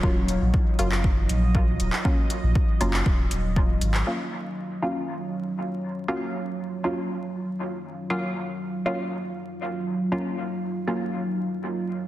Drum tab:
HH |--x---x---x---x-|--x---x---x---x-|----------------|----------------|
CP |-------x-------x|-------x-------x|----------------|----------------|
BD |o---o---o---o---|o---o---o---o---|----------------|----------------|

HH |----------------|----------------|
CP |----------------|----------------|
BD |----------------|----------------|